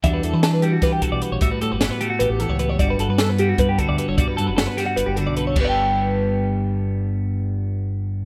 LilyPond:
<<
  \new Staff \with { instrumentName = "Clean electric guitar" } { \time 7/8 \key g \major \tempo 4 = 152 e''16 b'16 a'16 b'16 a'16 b'16 g'16 fis'16 b'16 g'16 a'16 d''16 b'16 cis''16 | e''16 b'16 a'16 b'16 a'16 b'16 g'16 fis'16 b'16 g'16 a'16 cis''16 b'16 cis''16 | d''16 b'16 a'16 b'16 a'16 b'16 g'16 fis'16 b'16 g'16 a'16 d''16 b'16 cis''16 | d''16 b'16 a'16 b'16 a'16 b'16 g'16 fis'16 b'16 g'16 a'16 d''16 b'16 cis''16 |
<b' d'' g''>2.~ <b' d'' g''>8~ | <b' d'' g''>2.~ <b' d'' g''>8 | }
  \new Staff \with { instrumentName = "Clean electric guitar" } { \time 7/8 \key g \major << { <g d' fis' g'>8 a'8 d'8 fis'8 g'8 fis'8 g'8 | fis'8 g'8 b8 fis'8 g'8 fis'8 g'8 | fis'8 b'8 b8 fis'8 b'8 fis'8 g'16 a'16 | fis'8 b'8 b8 fis'8 b'8 fis'8 a'8 |
<g b a'>2.~ <g b a'>8~ | <g b a'>2.~ <g b a'>8 | } \\ { e4. g4 b,4 | a,4. a4 e4 | g,4. g4 d4 | g,4. g4 d4 |
g,2.~ g,8~ | g,2.~ g,8 | } >> }
  \new Staff \with { instrumentName = "Fingered electric bass" } { \clef bass \time 7/8 \key g \major e,8 e,16 e4~ e16 e8 r16 b,,16 r16 bes,,16 | a,,16 r16 a,16 g,,8 r8. a,,16 a,,8 cis,8. | g,,8 g,,16 g,4~ g,16 g,8 r16 d,16 r16 g,,16 | b,,16 r16 g,16 fis,,8 r8. g,,16 g,,8 b,,8. |
g,,2.~ g,,8~ | g,,2.~ g,,8 | }
  \new DrumStaff \with { instrumentName = "Drums" } \drummode { \time 7/8 <hh bd>8 hh8 <hh sn>8 hh8 <hh bd sn>8 <hh bd>8 hh8 | <hh bd>8 hh8 <hh sn>8 hh8 hh8 hh8 hh8 | <hh bd>8 hh8 <hh sn>8 hh8 <hh bd>8 <hh bd>8 hh8 | <hh bd>8 hh8 <hh sn>8 <hh sn>8 hh8 hh8 hh8 |
<cymc bd>4 r4 r4. | r4 r4 r4. | }
>>